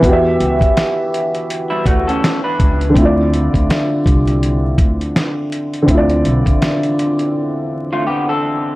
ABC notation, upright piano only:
X:1
M:4/4
L:1/8
Q:"Swing 16ths" 1/4=82
K:Ddor
V:1 name="Upright piano"
[E,B,^FGe]8 | [D,CEFd]8 | [D,CEFd]8 |]